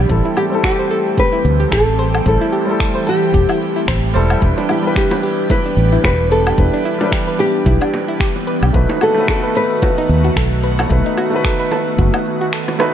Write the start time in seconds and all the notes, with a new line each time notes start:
Already playing: E3 G3 D4 E4 G4 B4
0.08 A1 G3 A3 C4 E4 A4, kick, shaker
0.25 E4
0.37 G4, low woodblock, shaker
0.50 G3 C4 E4, shaker
0.55 A4
0.63 G4 A4, finger snap, kick, shaker
0.79 C5
0.91 A4, shaker
1.07 shaker
1.18 G4 B4, kick, shaker
1.32 E4
1.45 D2, shaker
1.60 G4, shaker
1.72 A1 A4, finger snap, kick, shaker
1.99 C5, shaker
2.14 A4, low woodblock, shaker
2.25 A1 G3 C4 E4 A4, kick, shaker
2.41 E4
2.52 G4, shaker
2.65 G3 C4 E4, shaker
2.71 A4
2.79 A4, finger snap, kick, shaker
2.95 C5
3.07 G4 A4, shaker
3.23 shaker
3.33 E1 G4, kick, shaker
3.49 E4, low woodblock
3.62 shaker
3.76 E4, shaker
3.88 A1 C5, finger snap, kick, shaker
4.14 E1 G3 C4 E4 A4 C5, shaker
4.30 E5, low woodblock, shaker
4.41 E1 G3 B3 D4 E4 B4, kick, shaker
4.57 D4, high bongo
4.69 E4 G4, low woodblock, shaker
4.82 G3 D4 E4, shaker
4.87 B4
4.96 G4, finger snap, kick, shaker
5.11 B4, high bongo
5.23 G4, shaker
5.39 shaker
5.50 E4 B4, kick, high bongo, shaker
5.66 D4
5.77 A1, shaker
5.92 E4, shaker
6.04 E1 G4 B4, finger snap, kick, high bongo, shaker
6.31 A4 B4, shaker
6.47 G4, high bongo, low woodblock, shaker
6.57 E1 G3 D4 E4 B4, kick, shaker
6.73 D4
6.85 E4, shaker
6.98 G3 D4 E4, high bongo, shaker
7.04 B4
7.12 G4, finger snap, kick, shaker
7.27 B4
7.39 G4, high bongo, shaker
7.55 shaker
7.66 B1 E4, kick, shaker
7.81 D4, low woodblock
7.94 high bongo, shaker
8.08 E4, shaker
8.20 G4, finger snap, kick, shaker
8.36 high bongo
8.47 B4, shaker
8.63 B1 G4, low woodblock, shaker
8.73 B1 D#3 A3 D#4 F#4 B4, kick, shaker
8.89 D#4, high bongo
9.01 F#4 A4, low woodblock, shaker
9.15 A3 D#4 F#4, shaker
9.20 B4
9.28 A4, finger snap, kick, high bongo, shaker
9.43 B4
9.55 A4 B4, shaker
9.71 shaker
9.82 F#4, kick, high bongo, shaker
9.98 D#4
10.09 D#2, shaker
10.24 F#4, high bongo, shaker
10.36 B1 A4, finger snap, kick, shaker
10.63 B4, shaker
10.79 A4, high bongo, low woodblock, shaker
10.90 B1 A3 D#4 F#4 B4, kick, shaker
11.06 D#4
11.17 F#4, high bongo, low woodblock, shaker
11.30 A3 D#4 F#4, shaker
11.36 B4
11.44 A4, finger snap, kick, shaker
11.60 B4
11.71 A4, high bongo, shaker
11.87 shaker
11.98 F#1 F#4, kick, shaker
12.14 D#4, high bongo, low woodblock
12.26 shaker
12.41 F#4, shaker
12.53 A4, finger snap, shaker
12.68 cross-stick, high bongo
12.79 A3 D#4 F#4 B4, cross-stick, shaker